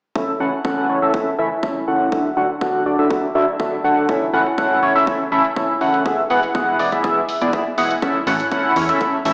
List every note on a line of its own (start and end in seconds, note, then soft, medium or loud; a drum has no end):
0.15 0.32 C#4 medium
0.15 0.32 E4 medium
0.15 0.32 A4 medium
0.15 0.32 E5 medium
0.15 kick loud
0.40 0.50 C#4 loud
0.40 0.50 E4 medium
0.40 0.50 A4 medium
0.40 0.50 F#5 loud
0.53 closed hi-hat medium
0.65 0.86 C#4 loud
0.65 0.86 E4 medium
0.65 0.86 A4 medium
0.65 0.86 F#5 loud
0.65 kick loud
0.89 1.00 C#4 medium
0.89 1.00 E4 medium
0.89 1.00 A4 medium
0.89 1.00 C#5 medium
0.89 open hi-hat loud
1.02 1.12 C#4 medium
1.02 1.12 E4 medium
1.02 1.12 A4 medium
1.02 1.12 E5 loud
1.02 closed hi-hat medium
1.14 1.30 E4 medium
1.14 1.30 A4 medium
1.14 1.30 E5 medium
1.14 kick loud
1.38 1.49 C#4 loud
1.38 1.49 E4 medium
1.38 1.49 A4 medium
1.38 1.49 E5 loud
1.38 open hi-hat loud
1.51 closed hi-hat medium
1.63 1.79 C#4 medium
1.63 1.79 E4 medium
1.63 1.79 A4 medium
1.63 1.79 E5 loud
1.63 kick loud
1.88 2.09 C#4 medium
1.88 2.09 E4 medium
1.88 2.09 A4 medium
1.88 2.09 F#5 medium
1.88 open hi-hat loud
2.01 closed hi-hat medium
2.12 2.28 D4 medium
2.12 2.28 F#4 medium
2.12 2.28 A4 medium
2.12 2.28 E5 medium
2.12 kick loud
2.37 2.47 D4 medium
2.37 2.47 F#4 medium
2.37 2.47 A4 medium
2.37 2.47 F#5 loud
2.37 open hi-hat loud
2.50 closed hi-hat medium
2.61 2.83 D4 medium
2.61 2.83 F#4 medium
2.61 2.83 A4 medium
2.61 2.83 F#5 loud
2.61 kick loud
2.86 2.96 D4 medium
2.86 2.96 F#4 medium
2.86 2.96 A4 medium
2.86 2.96 D5 medium
2.86 open hi-hat loud
2.99 3.09 D4 medium
2.99 3.09 F#4 medium
2.99 3.09 A4 medium
2.99 3.09 E5 loud
2.99 closed hi-hat medium
3.11 3.27 D4 medium
3.11 3.27 F#4 medium
3.11 3.27 A4 medium
3.11 3.27 E5 medium
3.11 kick loud
3.35 3.45 D4 medium
3.35 3.45 F#4 medium
3.35 3.45 A4 medium
3.35 3.45 E5 loud
3.35 open hi-hat loud
3.48 closed hi-hat medium
3.60 3.76 D4 medium
3.60 3.76 F#4 medium
3.60 3.76 A4 medium
3.60 3.76 E5 medium
3.60 kick loud
3.84 4.06 D4 medium
3.84 4.06 F#4 medium
3.84 4.06 A4 medium
3.84 4.06 F#5 medium
3.84 open hi-hat loud
3.97 closed hi-hat medium
4.09 4.25 C#4 medium
4.09 4.25 E4 medium
4.09 4.25 A4 medium
4.09 4.25 E5 medium
4.09 kick loud
4.09 closed hi-hat soft
4.33 4.44 C#4 medium
4.33 4.44 E4 medium
4.33 4.44 A4 medium
4.33 4.44 F#5 loud
4.33 open hi-hat loud
4.46 closed hi-hat medium
4.58 4.80 C#4 loud
4.58 4.80 E4 medium
4.58 4.80 A4 medium
4.58 4.80 F#5 loud
4.58 kick loud
4.58 closed hi-hat medium
4.83 4.93 C#4 medium
4.83 4.93 E4 medium
4.83 4.93 A4 medium
4.83 4.93 C#5 medium
4.83 open hi-hat loud
4.95 5.05 C#4 loud
4.95 5.05 E4 medium
4.95 5.05 A4 medium
4.95 5.05 E5 loud
4.95 closed hi-hat medium
5.07 5.23 C#4 medium
5.07 5.23 E4 medium
5.07 5.23 A4 medium
5.07 kick loud
5.07 closed hi-hat medium
5.32 5.42 C#4 loud
5.32 5.42 E4 medium
5.32 5.42 A4 medium
5.32 5.42 E5 loud
5.32 open hi-hat loud
5.45 closed hi-hat medium
5.56 5.72 C#4 medium
5.56 5.72 E4 medium
5.56 5.72 A4 medium
5.56 5.72 E5 loud
5.56 kick loud
5.56 closed hi-hat soft
5.81 6.03 C#4 medium
5.81 6.03 E4 medium
5.81 6.03 A4 medium
5.81 6.03 F#5 medium
5.81 open hi-hat loud
5.94 closed hi-hat medium
6.06 6.22 B3 medium
6.06 6.22 E4 medium
6.06 6.22 G#4 medium
6.06 6.22 E5 medium
6.06 kick loud
6.06 closed hi-hat soft
6.30 6.41 B3 loud
6.30 6.41 E4 medium
6.30 6.41 G#4 medium
6.30 6.41 F#5 loud
6.30 open hi-hat loud
6.43 closed hi-hat medium
6.55 6.77 B3 loud
6.55 6.77 E4 medium
6.55 6.77 G#4 medium
6.55 6.77 F#5 loud
6.55 kick loud
6.55 closed hi-hat medium
6.79 6.90 B3 medium
6.79 6.90 E4 medium
6.79 6.90 G#4 medium
6.79 6.90 D5 medium
6.79 open hi-hat loud
6.92 7.02 B3 loud
6.92 7.02 E4 medium
6.92 7.02 G#4 medium
6.92 7.02 E5 loud
6.92 kick medium
6.92 closed hi-hat medium
7.04 7.20 B3 medium
7.04 7.20 E4 medium
7.04 7.20 G#4 medium
7.04 7.20 E5 medium
7.04 kick loud
7.04 closed hi-hat medium
7.29 open hi-hat loud
7.41 7.51 B3 medium
7.41 7.51 E4 medium
7.41 7.51 G#4 medium
7.41 7.51 D5 loud
7.41 closed hi-hat medium
7.53 7.63 B3 medium
7.53 7.63 E4 medium
7.53 7.63 G#4 medium
7.53 7.63 E5 medium
7.53 kick loud
7.53 closed hi-hat soft
7.78 7.94 B3 medium
7.78 7.94 E4 medium
7.78 7.94 G#4 medium
7.78 7.94 F#5 medium
7.78 open hi-hat loud
7.91 closed hi-hat medium
8.02 8.18 C#4 medium
8.02 8.18 E4 medium
8.02 8.18 A4 medium
8.02 8.18 E5 medium
8.02 kick loud
8.02 closed hi-hat soft
8.27 8.43 A1 medium
8.27 8.37 C#4 medium
8.27 8.37 E4 medium
8.27 8.37 A4 medium
8.27 8.37 F#5 loud
8.27 open hi-hat loud
8.40 closed hi-hat medium
8.52 8.73 C#4 loud
8.52 8.73 E4 medium
8.52 8.73 A4 medium
8.52 8.73 F#5 loud
8.52 kick loud
8.52 closed hi-hat soft
8.76 8.92 E2 medium
8.76 8.86 C#4 medium
8.76 8.86 E4 medium
8.76 8.86 A4 medium
8.76 8.86 C#5 medium
8.76 open hi-hat loud
8.89 8.99 C#4 medium
8.89 8.99 E4 medium
8.89 8.99 A4 medium
8.89 8.99 E5 loud
8.89 closed hi-hat medium
9.01 9.17 E4 medium
9.01 9.17 A4 medium
9.01 kick loud
9.01 closed hi-hat medium
9.25 9.33 A1 medium
9.25 9.33 C#4 loud
9.25 9.33 E4 medium
9.25 9.33 A4 medium
9.25 9.33 E5 loud
9.25 open hi-hat loud